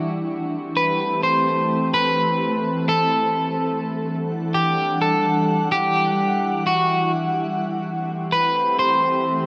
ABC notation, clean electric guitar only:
X:1
M:4/4
L:1/8
Q:1/4=127
K:Ador
V:1 name="Clean electric guitar"
z3 B2 c3 | B4 A4 | z3 G2 A3 | G4 F2 z2 |
z3 B2 c3 |]